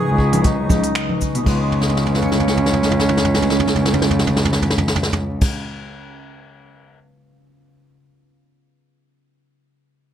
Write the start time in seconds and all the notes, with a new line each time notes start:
Already playing: C#3 B3 D#4 G#4 B4 G#5 C#6 D#6
0.07 C#2
0.18 G#4, kick
0.33 open hi-hat, low conga, cabasa
0.43 F#3 D#4, kick, open hi-hat, cabasa
0.69 C#2 D#4, kick, low conga, cabasa
0.84 open hi-hat, cabasa
0.95 G#4, finger snap, open hi-hat, cabasa
1.09 low conga
1.20 D#4, kick, cabasa
1.35 B2, open hi-hat, cabasa
1.43 C#2 C#3 G#3 C#4 F5, kick, crash
1.48 B3 F4 B4
1.52 G#4
1.72 floor tom
1.81 snare
1.89 floor tom
1.97 snare
2.06 floor tom
2.15 snare
2.22 floor tom
2.32 snare
2.40 floor tom
2.48 snare
2.57 floor tom
2.66 snare
2.73 floor tom
2.83 snare
2.91 floor tom
2.99 snare
3.09 floor tom
3.17 snare
3.25 floor tom
3.34 snare
3.42 floor tom
3.50 snare
3.60 floor tom
3.67 snare
3.76 floor tom
3.85 snare
3.94 floor tom
4.02 snare
4.11 floor tom
4.19 snare
4.27 floor tom
4.36 snare
4.45 floor tom
4.53 snare
4.62 floor tom
4.70 snare
4.78 floor tom
4.88 snare
4.96 floor tom
5.03 snare
5.13 floor tom
5.41 kick, crash